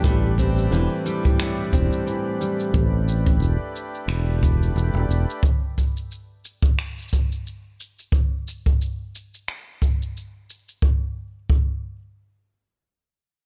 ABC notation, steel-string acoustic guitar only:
X:1
M:4/4
L:1/8
Q:"Swing 16ths" 1/4=89
K:Ador
V:1 name="Steel-string acoustic guitar" clef=bass
A,, C E, G, A,, C E, G, | z8 | z8 | z8 |
z8 |]